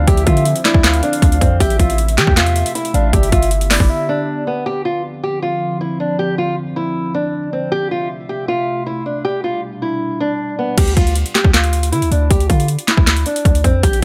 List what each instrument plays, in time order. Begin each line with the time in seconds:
Already playing: analog synth pad D3 F3 C4
0.07 808-style bass D2, nylon-string guitar G4, soft synth lead E5, kick, closed hi-hat
0.17 closed hi-hat
0.27 808-style bass D3, nylon-string guitar F4, kick, closed hi-hat
0.37 closed hi-hat
0.45 closed hi-hat
0.56 closed hi-hat
0.65 nylon-string guitar E4, soft synth lead D5, snare, clap, closed hi-hat
0.74 808-style bass D2, kick
0.84 soft synth lead F5, snare, clap, closed hi-hat
0.94 closed hi-hat
1.03 nylon-string guitar D4, closed hi-hat
1.13 closed hi-hat
1.22 808-style bass D2, kick, closed hi-hat
1.32 closed hi-hat
1.41 808-style bass F2, nylon-string guitar C4, kick, closed hi-hat
1.60 808-style bass A1, analog synth pad C3 A3 E5, nylon-string guitar G4, soft synth lead E5, kick, closed hi-hat
1.70 closed hi-hat
1.79 808-style bass A1, nylon-string guitar F4, kick, closed hi-hat
1.90 closed hi-hat
1.98 closed hi-hat
2.08 closed hi-hat
2.18 808-style bass E3, nylon-string guitar G4, soft synth lead G5, snare, clap, closed hi-hat
2.27 808-style bass E2, kick
2.37 nylon-string guitar F4, snare, clap, closed hi-hat
2.46 closed hi-hat
2.56 closed hi-hat
2.66 closed hi-hat
2.75 nylon-string guitar E4, closed hi-hat
2.85 closed hi-hat
2.94 808-style bass A1, nylon-string guitar D4, soft synth lead F5, closed hi-hat
3.13 808-style bass G1, analog synth pad D3 B3 G4, nylon-string guitar G4, soft synth lead E5, kick, closed hi-hat
3.23 closed hi-hat
3.32 808-style bass G1, nylon-string guitar F4, kick, closed hi-hat
3.42 closed hi-hat
3.51 closed hi-hat
3.61 closed hi-hat
3.70 nylon-string guitar E4, soft synth lead D5, snare, clap, open hi-hat
3.80 808-style bass G1, kick
3.90 soft synth lead E5
4.09 nylon-string guitar D4
4.47 nylon-string guitar B3
4.66 analog synth pad D3 F3 C4, nylon-string guitar G4
4.85 nylon-string guitar F4
5.24 nylon-string guitar G4
5.42 nylon-string guitar F4
5.81 nylon-string guitar E4
6.00 nylon-string guitar D4
6.19 nylon-string guitar G4
6.38 nylon-string guitar F4
6.76 nylon-string guitar E4
7.15 nylon-string guitar D4
7.53 nylon-string guitar C4
7.72 analog synth pad C3 A3 E5, nylon-string guitar G4
7.91 nylon-string guitar F4
8.29 nylon-string guitar G4
8.48 nylon-string guitar F4
8.86 nylon-string guitar E4
9.06 nylon-string guitar D4
9.25 analog synth pad B2 G3 D4, nylon-string guitar G4
9.44 nylon-string guitar F4
9.82 nylon-string guitar E4
10.20 nylon-string guitar D4
10.59 nylon-string guitar B3
10.78 808-style bass D2, nylon-string guitar G4, kick, closed hi-hat, crash
10.88 closed hi-hat
10.97 808-style bass D2, nylon-string guitar F4, kick, closed hi-hat
11.07 closed hi-hat
11.15 closed hi-hat
11.26 closed hi-hat
11.35 nylon-string guitar G4, snare, clap, closed hi-hat
11.45 808-style bass D2, kick
11.54 nylon-string guitar F4, snare, clap, closed hi-hat
11.64 closed hi-hat
11.73 closed hi-hat
11.83 closed hi-hat
11.92 808-style bass D3, nylon-string guitar E4, closed hi-hat
12.02 808-style bass D2, closed hi-hat
12.11 808-style bass D2, nylon-string guitar D4, closed hi-hat
12.30 808-style bass D2, nylon-string guitar G4, kick, closed hi-hat
12.40 closed hi-hat
12.50 808-style bass D3, nylon-string guitar F4, kick, closed hi-hat
12.60 closed hi-hat
12.68 closed hi-hat
12.79 closed hi-hat
12.88 nylon-string guitar E4, snare, clap, closed hi-hat
12.97 808-style bass D2, kick
13.07 snare, clap, closed hi-hat
13.17 closed hi-hat
13.26 nylon-string guitar D4, closed hi-hat
13.36 closed hi-hat
13.45 808-style bass D2, kick, closed hi-hat
13.55 closed hi-hat
13.64 808-style bass F2, nylon-string guitar C4, kick, closed hi-hat
13.83 808-style bass A1, nylon-string guitar G4, kick, closed hi-hat
13.93 closed hi-hat